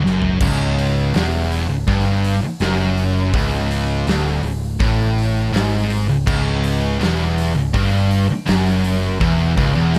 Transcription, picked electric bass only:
0.05 0.39 F#1 medium
0.41 1.10 C#1 medium
1.15 1.66 E1 medium
1.69 1.86 C#1 medium
1.87 2.39 G1 loud
2.42 muted picked electric bass stroke soft
2.60 3.30 F#1 loud
3.34 4.03 C#1 medium
4.06 4.41 D1 medium
4.42 4.77 C#1 medium
4.80 5.50 A1 loud
5.51 6.04 G#1 loud
6.07 6.25 C#1 medium
6.27 6.96 C#1 loud
7.01 7.52 E1 loud
7.56 7.73 C#1 medium
7.75 8.25 G1 loud
8.31 muted picked electric bass stroke soft
8.48 9.17 F#1 loud
9.21 9.55 E1 medium
9.58 9.75 C#1 medium
9.76 9.99 E1 loud

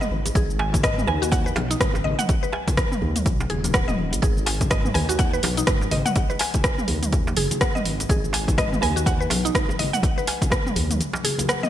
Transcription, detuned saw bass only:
0.11 0.30 G#1 medium
0.35 1.04 G#1 loud
1.08 1.52 D#2 medium
1.56 1.76 B1 medium
1.80 2.00 G#1 loud
2.05 2.16 G#1 medium
3.02 3.25 D#2 medium
3.26 3.45 B1 medium
3.50 4.14 D#1 medium
4.13 4.20 G#1 loud
4.23 4.91 G#1 loud
4.95 5.39 D#2 medium
5.43 5.63 B1 medium
5.67 5.87 G#1 loud
5.91 6.02 G#1 medium
6.89 7.33 D#2 medium
7.37 7.48 F#1 loud
7.85 8.05 G#1 medium
8.09 8.78 G#1 loud
8.82 9.27 D#2 medium
9.31 9.50 B1 medium
9.55 9.74 G#1 loud
9.79 9.90 G#1 medium
10.76 11.00 D#2 medium

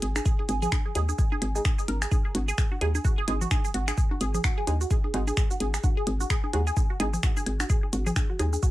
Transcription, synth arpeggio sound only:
0.02 0.08 G#4 medium
0.16 0.20 G#4 medium
0.25 0.31 G#4 loud
0.39 0.43 G#4 medium
0.49 0.54 G#4 medium
0.62 0.66 G#4 loud
0.72 0.78 G#4 medium
0.86 0.90 G#4 medium
0.95 1.01 G#4 loud
1.09 1.13 G#4 medium
1.18 1.24 G#4 medium
1.32 1.36 G#4 loud
1.42 1.46 G#4 medium
1.65 1.69 G#4 medium
1.79 1.81 G#4 medium
1.88 1.94 A#4 medium
2.02 2.06 G#4 medium
2.11 2.17 G#4 loud
2.25 2.29 G#4 medium
2.35 2.39 F#4 medium
2.48 2.52 G#4 loud
2.58 2.64 G#4 medium
2.72 2.74 F#4 medium
2.81 2.87 G#4 loud
2.95 2.99 G#4 medium
3.04 3.08 F#4 medium
3.18 3.22 G#4 loud
3.28 3.34 G#4 medium
3.41 3.44 F#4 medium
3.51 3.57 G#4 loud
3.65 3.69 G#4 medium
3.74 3.78 F#4 medium
3.88 3.92 G#4 loud
3.98 4.03 G#4 medium
4.11 4.14 F#4 medium
4.21 4.27 G#4 loud
4.34 4.38 G#4 medium
4.44 4.48 F#4 medium
4.58 4.62 G#4 loud
4.67 4.73 G#4 medium
4.81 4.84 F#4 medium
4.91 4.96 G#4 loud
5.04 5.08 G#4 medium
5.14 5.18 F#4 medium
5.27 5.32 G#4 loud
5.37 5.43 G#4 medium
5.51 5.53 F#4 medium
5.60 5.66 G#4 loud
5.74 5.78 G#4 medium
5.84 5.87 F#4 medium
5.97 6.01 G#4 loud
6.07 6.13 G#4 medium
6.20 6.23 F#4 medium
6.30 6.36 G#4 loud
6.44 6.48 G#4 medium
6.53 6.57 F#4 medium
6.67 6.71 G#4 loud
6.77 6.82 G#4 medium
6.90 6.93 F#4 medium
7.00 7.06 G#4 loud
7.13 7.18 G#4 medium
7.23 7.27 F#4 medium
7.37 7.41 G#4 loud
7.46 7.52 G#4 medium
7.60 7.63 F#4 medium
7.70 7.75 G#4 loud
7.83 7.87 G#4 medium
7.93 7.97 F#4 medium
8.06 8.11 G#4 loud
8.16 8.22 G#4 medium
8.30 8.32 F#4 medium
8.39 8.45 G#4 loud
8.53 8.57 G#4 medium
8.63 8.66 F#4 medium

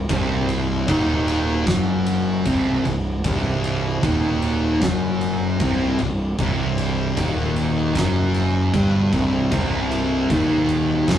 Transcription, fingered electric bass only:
0.09 0.84 C1 loud
0.88 1.63 D#1 medium
1.67 2.42 F#1 medium
2.45 2.82 C1 medium
2.85 3.21 C1 medium
3.25 3.99 C1 medium
4.03 4.77 D#1 medium
4.82 5.56 F#1 loud
5.60 5.97 C1 medium
5.99 6.36 C1 medium
6.39 7.13 C1 medium
7.17 7.91 D#1 medium
7.96 8.70 F#1 loud
8.74 9.10 G1 medium
9.13 9.49 C1 medium
9.52 10.26 C1 medium
10.30 11.04 D#1 medium
11.08 11.19 F#1 medium

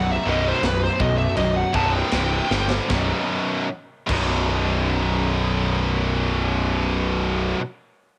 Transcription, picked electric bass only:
0.00 0.17 B0 loud
0.27 0.52 B0 medium
0.63 0.89 B0 medium
1.00 1.26 B1 medium
1.37 1.63 B0 medium
1.74 2.01 B0 medium
2.13 2.40 C1 medium
2.51 2.79 G1 medium
2.90 3.12 B0 medium
4.09 7.53 B0 loud

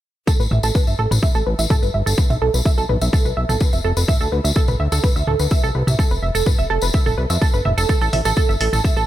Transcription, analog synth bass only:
0.40 0.47 A1 medium
0.51 0.59 A1 medium
0.64 0.71 A1 medium
0.87 0.95 G1 medium
0.99 1.07 A1 medium
1.11 1.19 A1 medium
1.35 1.43 A1 medium
1.47 1.55 A1 medium
1.59 1.66 A1 medium
1.83 1.90 G1 medium
1.94 2.02 G1 medium
2.07 2.14 G1 medium
2.30 2.38 B1 medium
2.42 2.50 B1 medium
2.54 2.62 B1 medium
2.78 2.85 B1 medium
2.89 2.97 B1 medium
3.02 3.09 B1 medium
3.25 3.33 B1 medium
3.37 3.45 B1 medium
3.49 3.57 B1 medium
3.73 3.81 F1 medium
3.85 3.93 F1 loud
3.97 4.04 F1 medium
4.21 4.28 D2 medium
4.32 4.40 D2 medium
4.44 4.52 D2 medium
4.68 4.76 C2 medium
4.80 4.88 D2 medium
4.92 5.00 D2 medium
5.16 5.24 D2 medium
5.27 5.36 D2 medium
5.40 5.47 D2 medium
5.64 5.71 C2 medium
5.75 5.83 C2 loud
5.87 5.95 C2 medium
6.11 6.19 F1 medium
6.23 6.31 F1 medium
6.35 6.43 F1 medium
6.59 6.66 F1 medium
6.70 6.78 F1 loud
6.83 6.90 F1 medium
7.06 7.14 F1 medium
7.18 7.26 C2 medium
7.30 7.38 F2 medium
7.54 7.61 G1 medium
7.65 7.74 F1 medium
7.78 7.85 F1 medium
8.02 8.09 A1 medium
8.13 8.21 A1 medium
8.25 8.33 A1 medium
8.49 8.57 G1 medium
8.61 8.69 A1 loud
8.73 8.81 A1 medium
8.97 9.04 A1 medium

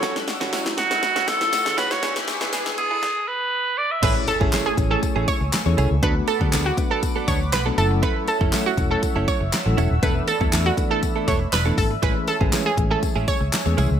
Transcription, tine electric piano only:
0.00 0.28 F#3 medium
0.00 0.28 C#4 medium
0.00 0.28 E4 medium
0.00 0.28 A4 medium
0.41 1.04 F#3 medium
0.41 1.04 C#4 medium
0.41 1.04 E4 medium
0.41 1.04 F#4 loud
1.28 1.55 F#3 medium
1.28 1.55 C#4 medium
1.28 1.55 E4 medium
1.28 1.55 A4 medium
1.66 1.93 F#3 medium
1.66 1.93 C#4 medium
1.66 1.93 E4 medium
1.66 1.93 G#4 medium
2.02 2.30 G#3 medium
2.02 2.30 D4 medium
2.02 2.30 E4 medium
2.02 2.30 B4 medium
2.41 3.03 G#3 medium
2.41 3.03 D4 medium
2.41 3.03 E4 medium
2.41 3.03 B4 loud
4.02 4.30 A3 medium
4.02 4.30 C#4 medium
4.02 4.30 E4 medium
4.02 4.30 G#4 medium
4.02 4.30 C#5 medium
4.41 4.68 A3 medium
4.41 4.68 C#4 medium
4.41 4.68 E4 medium
4.41 4.68 G#4 medium
4.41 4.68 C#5 medium
4.77 5.42 A3 medium
4.77 5.42 C#4 medium
4.77 5.42 E4 medium
4.77 5.42 G#4 medium
4.77 5.42 C#5 medium
5.66 5.93 A3 medium
5.66 5.93 C#4 medium
5.66 5.93 E4 medium
5.66 5.93 G#4 medium
5.66 5.93 C#5 medium
6.03 6.30 A3 medium
6.03 6.30 B3 medium
6.03 6.30 D4 medium
6.03 6.30 F#4 medium
6.03 6.30 B4 medium
6.41 6.68 A3 medium
6.41 6.68 B3 medium
6.41 6.68 D4 medium
6.41 6.68 F#4 medium
6.41 6.68 G#4 medium
6.78 7.42 A3 medium
6.78 7.42 B3 medium
6.78 7.42 D4 medium
6.78 7.42 F#4 medium
6.78 7.42 B4 medium
7.66 7.76 A3 medium
7.66 7.78 B3 medium
7.66 7.78 D4 medium
7.66 7.78 F#4 medium
7.66 7.77 A4 medium
7.78 8.28 F#3 medium
7.78 8.28 A3 medium
7.78 8.28 C#4 medium
7.78 8.28 E4 medium
7.78 8.28 A4 medium
8.41 8.68 F#3 medium
8.41 8.68 A3 medium
8.41 8.68 C#4 medium
8.41 8.68 E4 medium
8.41 8.68 A4 medium
8.78 9.42 F#3 medium
8.78 9.42 A3 medium
8.78 9.42 C#4 medium
8.78 9.42 E4 medium
8.78 9.42 A4 medium
9.66 9.93 F#3 medium
9.66 9.93 A3 medium
9.66 9.93 C#4 medium
9.66 9.93 E4 medium
9.66 9.93 A4 medium
10.03 10.30 E3 medium
10.03 10.30 A3 medium
10.03 10.30 B3 medium
10.03 10.30 D4 medium
10.03 10.30 A4 medium
10.41 10.68 E3 medium
10.41 10.68 A3 medium
10.41 10.68 B3 medium
10.41 10.68 D4 medium
10.41 10.68 A4 medium
10.77 11.42 E3 medium
10.77 11.42 A3 medium
10.77 11.42 B3 medium
10.77 11.42 D4 medium
10.77 11.42 A4 medium
11.66 11.93 E3 medium
11.66 11.93 A3 medium
11.66 11.93 B3 medium
11.66 11.93 D4 medium
11.66 11.93 A4 medium
12.03 12.30 E3 medium
12.03 12.30 G#3 medium
12.03 12.30 A3 medium
12.03 12.30 C#4 medium
12.03 12.30 G#4 medium
12.41 12.68 E3 medium
12.41 12.68 G#3 medium
12.41 12.68 A3 medium
12.41 12.68 C#4 medium
12.41 12.68 B4 medium
12.77 13.42 E3 medium
12.77 13.42 G#3 medium
12.77 13.42 A3 medium
12.77 13.42 C#4 medium
12.77 13.42 G#4 medium
13.66 13.93 E3 medium
13.66 13.93 G#3 medium
13.66 13.93 A3 medium
13.66 13.93 C#4 medium
13.66 13.93 G#4 medium

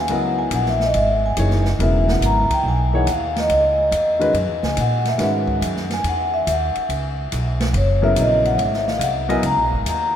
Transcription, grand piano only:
0.10 0.75 F#3 medium
0.10 0.75 B3 medium
0.10 0.75 E4 medium
0.10 0.75 A#4 medium
0.10 0.76 D#5 medium
1.37 1.63 E3 medium
1.37 1.63 A#3 medium
1.37 1.63 D#4 medium
1.37 1.64 G#4 medium
1.37 1.64 C#5 medium
1.79 2.45 C#3 medium
1.79 2.45 F#3 medium
1.79 2.45 B3 medium
1.79 2.46 E4 medium
1.79 2.45 A#4 medium
2.93 3.05 E3 medium
2.93 3.06 A#3 medium
2.93 3.06 D#4 medium
2.93 3.06 G#4 medium
2.93 3.06 C#5 medium
4.19 4.32 D#3 medium
4.19 4.33 G#3 medium
4.19 4.33 C#4 medium
4.19 4.33 F#4 medium
4.19 4.33 B4 medium
5.18 5.84 D#3 medium
5.18 5.84 G#3 medium
5.18 5.84 C#4 medium
5.18 5.85 F#4 medium
5.18 5.85 B4 medium
8.02 8.55 C#3 medium
8.02 8.56 F#3 medium
8.02 8.56 B3 medium
8.02 8.56 E4 medium
8.02 8.56 A#4 medium
9.29 9.42 F#3 medium
9.29 9.41 B3 medium
9.29 9.42 E4 medium
9.29 9.42 A#4 medium
9.29 9.42 D#5 loud

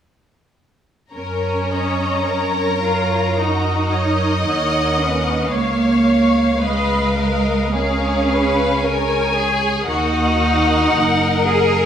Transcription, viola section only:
1.13 1.66 A#4 soft
1.13 2.23 C#5 soft
1.69 2.26 D#5 soft
2.25 4.41 A#4 soft
2.25 2.80 C#5 soft
2.81 3.36 C#5 soft
3.37 3.92 D#5 soft
3.92 4.43 C#5 soft
4.44 5.50 A#4 soft
4.44 4.97 C#5 soft
4.98 5.52 B4 soft
5.51 6.03 C#5 soft
6.04 6.58 C#5 soft
6.59 7.74 B4 soft
6.59 7.15 D#5 medium
7.16 7.73 D#5 soft
7.73 8.29 A#4 soft
7.73 8.81 C#5 soft
8.29 8.81 G#4 soft
8.82 9.86 G#4 soft
8.82 9.85 C#5 soft
9.87 11.86 A#4 soft
9.87 11.86 D#5 soft

